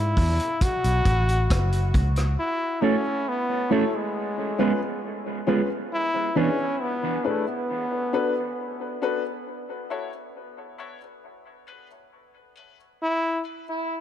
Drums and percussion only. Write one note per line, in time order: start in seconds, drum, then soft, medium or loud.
0.17 kick medium
0.17 open hi-hat medium
0.40 closed hi-hat medium
0.61 kick loud
0.61 closed hi-hat medium
0.84 closed hi-hat medium
1.05 kick medium
1.05 closed hi-hat medium
1.29 closed hi-hat soft
1.50 kick loud
1.50 cross-stick loud
1.50 closed hi-hat medium
1.72 closed hi-hat medium
1.94 kick medium
1.94 closed hi-hat medium
2.16 cross-stick medium
2.16 closed hi-hat soft